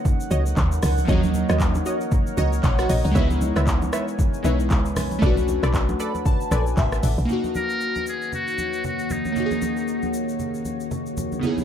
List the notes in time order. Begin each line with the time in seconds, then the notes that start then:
Already playing: F#3 A#3 C#4 D#4 A#4 C#5 F#5
0.05 kick, low conga, shaker
0.20 shaker
0.31 C#2 F#4 C#5 D#5, high conga, shaker
0.46 shaker
0.57 D#2, kick, clap, low conga, shaker
0.72 shaker
0.83 C#2, cross-stick, open hi-hat, high conga, low conga, shaker
0.98 high conga, shaker
1.05 D#2 F3 A#3 F#4 C#5, kick, low conga, shaker
1.09 F#3 C#4 D#4 D#5
1.23 high conga, shaker
1.34 high conga, shaker
1.49 D#2 F#4 C#5 D#5, cross-stick, shaker
1.60 kick, clap, shaker
1.75 high conga, shaker
1.86 F#4 C#5 D#5, shaker
2.01 shaker
2.12 kick, low conga, shaker
2.27 shaker
2.37 C#2 F#4 C#5 D#5, high conga, shaker
2.53 shaker
2.63 A#1 D#4 F#5, kick, clap, low conga, shaker
2.79 F#4, cross-stick, shaker
2.89 A#1 F#4 C#5 D#5, open hi-hat, high conga, low conga, shaker
3.04 C#2 D#4, high conga, shaker
3.11 C#2 E3 G#3 B3 B4 C#5 G#5, kick
3.15 D#4 E4 E5, low conga, shaker
3.31 high conga, shaker
3.41 high conga, shaker
3.56 C#2 B4 C#5 E5, cross-stick, shaker
3.67 kick, clap, shaker
3.82 high conga, shaker
3.93 B4 C#5 E5, cross-stick, shaker
4.08 shaker
4.19 kick, low conga, shaker
4.34 shaker
4.43 B1 G#3 B3 D#4 E4 B4 C#5 E5, high conga, shaker
4.60 shaker
4.70 C#2, kick, clap, low conga, shaker
4.86 shaker
4.96 B1, cross-stick, open hi-hat, high conga, low conga, shaker
5.11 high conga, shaker
5.19 B1 A3 C#4 F#4 A4 B4 F#5 A5, kick, low conga, shaker
5.23 D4 F#4 D5
5.37 high conga, shaker
5.48 high conga, shaker
5.63 B1 A4 B4 D5, cross-stick, shaker
5.74 kick, clap, shaker
5.89 high conga, shaker
6.00 A4 B4 D5 B5, shaker
6.15 high conga, shaker
6.26 A5, kick, low conga, shaker
6.41 shaker
6.51 A#1 A4 B4 D5 G#5, cross-stick, high conga, shaker
6.67 shaker
6.77 A1 E5, kick, clap, low conga, shaker
6.92 cross-stick, shaker
7.03 A1, open hi-hat, high conga, low conga, shaker
7.18 B1, high conga, shaker
7.25 D#2 D#3 A#3 C#4 F#4 C#5, low conga, shaker
7.30 D#4 F#4
7.44 high conga, shaker
7.55 A#4, high conga, shaker
7.70 shaker
7.81 shaker
7.95 high conga, shaker
8.07 G#4, shaker
8.22 shaker
8.33 F#4, low conga, shaker
8.48 shaker
8.58 high conga, shaker
8.73 shaker
8.84 F#4, low conga, shaker
8.99 shaker
9.10 D#4, high conga, low conga, shaker
9.25 high conga, shaker
9.32 A#3 C#4, low conga, shaker
9.37 D#4 F#4
9.46 G#4
9.51 high conga, shaker
9.62 high conga, shaker
9.77 shaker
9.88 shaker
10.02 high conga, shaker
10.14 shaker
10.29 shaker
10.39 low conga, shaker
10.54 shaker
10.65 high conga, shaker
10.80 shaker
10.91 low conga, shaker
11.06 shaker
11.17 high conga, low conga, shaker
11.32 high conga, shaker
11.39 C#3 B3 D#4, low conga, shaker
11.45 E4 G#4
11.58 high conga, shaker